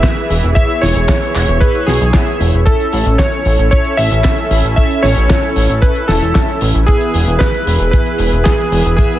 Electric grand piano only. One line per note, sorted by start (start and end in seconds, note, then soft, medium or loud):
0.00 0.52 E5 loud
0.55 0.80 E5 loud
0.82 1.63 C#5 loud
1.60 1.85 B4 medium
1.86 2.36 G#4 medium
2.66 3.15 A4 medium
3.18 3.70 C#5 loud
3.71 3.99 C#5 loud
3.97 4.75 E5 loud
4.76 5.04 E5 loud
5.03 5.78 C#5 loud
5.82 6.09 B4 medium
6.08 6.57 A4 loud
6.87 7.41 G#4 loud
7.39 7.89 B4 loud
7.91 8.47 B4 loud
8.44 8.94 G#4 loud
8.97 9.19 G#4 medium